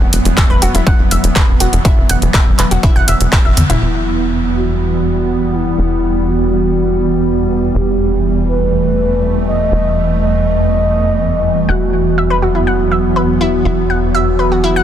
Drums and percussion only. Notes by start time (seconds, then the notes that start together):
0.13 open hi-hat
0.25 closed hi-hat
0.37 kick, clap, closed hi-hat
0.62 open hi-hat
0.75 closed hi-hat
0.87 kick, closed hi-hat
1.11 open hi-hat
1.24 closed hi-hat
1.36 kick, clap, closed hi-hat
1.60 open hi-hat
1.73 closed hi-hat
1.85 kick, closed hi-hat
2.09 open hi-hat
2.22 closed hi-hat
2.34 kick, clap, closed hi-hat
2.59 clap, open hi-hat
2.71 closed hi-hat
2.83 kick, closed hi-hat
3.08 open hi-hat
3.21 closed hi-hat
3.32 kick, clap, closed hi-hat
3.57 open hi-hat, high tom
3.70 closed hi-hat, mid tom